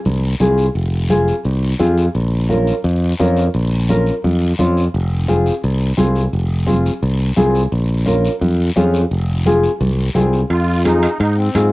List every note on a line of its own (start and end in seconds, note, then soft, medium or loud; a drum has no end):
0.05 0.34 C2 medium
0.05 high conga medium
0.05 long guiro medium
0.40 0.68 C2 medium
0.40 0.65 C4 medium
0.40 0.65 F4 medium
0.40 0.65 G#4 medium
0.40 high conga medium
0.40 short guiro medium
0.58 short guiro medium
0.75 1.31 F1 medium
0.75 long guiro medium
1.10 1.34 C4 medium
1.10 1.34 F4 medium
1.10 1.35 G#4 medium
1.10 high conga medium
1.10 short guiro medium
1.28 short guiro medium
1.45 1.73 C2 medium
1.45 long guiro medium
1.80 2.08 F2 medium
1.80 2.04 C4 medium
1.80 2.04 F4 medium
1.80 2.05 G#4 medium
1.80 high conga medium
1.80 short guiro medium
1.98 short guiro medium
2.15 2.71 A#1 medium
2.15 long guiro medium
2.49 2.74 C#4 medium
2.49 2.74 F4 medium
2.49 2.74 A#4 medium
2.49 high conga medium
2.49 short guiro medium
2.67 short guiro medium
2.84 3.12 F2 medium
2.84 long guiro medium
3.19 3.48 F2 medium
3.19 3.44 C#4 medium
3.19 3.44 F4 medium
3.19 3.44 A#4 medium
3.19 high conga medium
3.19 short guiro medium
3.37 short guiro medium
3.54 4.10 A#1 medium
3.54 long guiro medium
3.89 4.14 C#4 medium
3.89 4.14 F4 medium
3.89 4.14 A#4 medium
3.89 high conga medium
3.89 short guiro medium
4.06 short guiro medium
4.24 4.52 F2 medium
4.24 high conga medium
4.24 long guiro medium
4.59 4.87 F2 medium
4.59 4.83 C#4 medium
4.59 4.83 F4 medium
4.59 4.83 C5 medium
4.59 high conga medium
4.59 short guiro medium
4.77 short guiro medium
4.94 5.50 F1 medium
4.94 long guiro medium
5.28 5.53 C4 medium
5.28 5.53 F4 medium
5.28 5.53 G#4 medium
5.28 high conga medium
5.28 short guiro medium
5.46 short guiro medium
5.63 5.91 C2 medium
5.63 long guiro medium
5.97 6.26 C2 medium
5.97 6.22 C4 medium
5.97 6.22 F4 medium
5.97 6.22 G#4 medium
5.97 high conga medium
5.97 short guiro medium
6.15 short guiro medium
6.33 6.89 F1 medium
6.33 long guiro medium
6.67 6.91 C4 medium
6.67 6.92 F4 medium
6.67 6.92 G#4 medium
6.67 high conga medium
6.67 short guiro medium
6.85 short guiro medium
7.02 7.30 C2 medium
7.02 long guiro medium
7.36 7.65 C2 medium
7.36 7.61 C4 medium
7.36 7.61 F4 medium
7.36 7.62 G#4 medium
7.36 high conga medium
7.36 short guiro medium
7.55 short guiro medium
7.72 8.28 A#1 medium
7.72 long guiro medium
8.06 8.31 C#4 medium
8.06 8.31 F4 medium
8.06 8.31 A#4 medium
8.06 high conga medium
8.06 short guiro medium
8.25 short guiro medium
8.42 8.69 F2 medium
8.42 high conga medium
8.42 long guiro medium
8.76 9.04 F2 medium
8.76 9.00 C#4 medium
8.76 9.01 F4 medium
8.76 9.01 G#4 medium
8.76 high conga medium
8.76 short guiro medium
8.94 short guiro medium
9.11 9.67 F1 medium
9.11 long guiro medium
9.46 9.70 C4 medium
9.46 9.70 F4 medium
9.46 9.71 G#4 medium
9.46 high conga medium
9.46 short guiro medium
9.64 short guiro medium
9.81 10.09 C2 medium
9.81 high conga medium
9.81 long guiro medium
10.15 10.43 C2 medium
10.15 10.39 C4 medium
10.15 10.40 F4 medium
10.15 10.40 G#4 medium
10.15 high conga medium
10.15 short guiro medium
10.33 short guiro medium
10.50 11.06 F2 medium
10.50 10.83 F4 medium
10.50 high timbale medium
10.50 long guiro medium
10.84 11.09 C4 medium
10.84 11.18 D#4 medium
10.84 11.09 F4 medium
10.84 11.09 G#4 medium
10.84 high conga medium
10.84 high timbale medium
10.84 short guiro medium
11.02 high timbale medium
11.02 short guiro medium
11.20 11.48 G#2 medium
11.20 11.36 D#4 medium
11.20 high timbale medium
11.20 long guiro medium
11.37 11.70 C4 medium
11.55 11.72 G#2 medium
11.55 11.72 C4 medium
11.55 11.72 F4 medium
11.55 11.72 G#4 medium
11.55 high conga medium
11.55 high timbale medium
11.55 short guiro medium